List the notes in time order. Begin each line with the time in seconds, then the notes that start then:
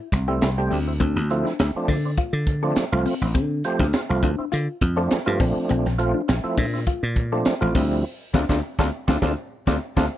0.12 C2, kick, snare, closed hi-hat
0.28 G3 A3 C4 E4 G4
0.42 C2, snare, closed hi-hat
0.58 G3 A3 C4 G4
0.71 D2 C4, open hi-hat
0.87 C4 E4
1.00 D2 C4, kick, closed hi-hat
1.16 D2
1.30 F3 A3 C4 E4, closed hi-hat
1.45 D4, snare
1.59 D2 C4 E4, snare, closed hi-hat
1.75 F3 A3 C4 D4, muted slap bass stroke
1.88 D3 D4, kick, open hi-hat
2.05 C4 D4
2.17 F4, kick, closed hi-hat
2.33 D3
2.47 kick, closed hi-hat
2.63 F3 A3 C4 D4 A4
2.76 muted slap bass stroke, snare, closed hi-hat
2.92 C2 F3 A3 C4 F4
3.06 C4, open hi-hat
3.21 A1 C4 E4
3.35 D3 C4, kick, closed hi-hat
3.64 F3 A3 C4 G4, closed hi-hat
3.79 D2 D4, kick, snare
3.93 C4 F4, snare, closed hi-hat
4.09 C2 F3 A3 C4 F4
4.23 D2 D4, kick, closed hi-hat
4.38 C4 E4, muted slap bass stroke
4.52 D3 F4, closed hi-hat
4.81 F2, kick, closed hi-hat
4.96 F3 A3 C4 D4 A4
5.11 muted slap bass stroke, snare, closed hi-hat
5.26 G2 F3 A3 C4 F4
5.40 A#1 F3 A3 C4 D4, kick, open hi-hat
5.69 A#1 C4, closed hi-hat
5.85 A#1, snare
5.98 F3 A3 C4 F4, closed hi-hat
6.14 D4
6.28 A#1 C4 F4, snare, closed hi-hat
6.44 F3 A3 C4 E4
6.58 A#2 D4, kick, open hi-hat
6.73 C4 E4, snare
6.87 F4, kick, closed hi-hat
7.03 A#2
7.16 kick, closed hi-hat
7.32 F3 A3 C4 D4 A4
7.45 muted slap bass stroke, snare, closed hi-hat
7.61 A1 F3 A3 C4 F4
7.75 D2 F3 G3 C4 E4, kick, open hi-hat
8.34 D2 A3 C4 D4 F4, kick, snare
8.49 D2 A3 C4 D4 F4, kick, snare
8.79 D2 A3 C4 D4 F4, kick, snare
9.08 D2 A3 C4 D4 F4, kick, snare
9.22 D2 A3 C4 D4 F4, kick, snare
9.67 D2 A3 C4 D4 F4, kick, snare
9.97 D2 A3 C4 D4 F4, kick, snare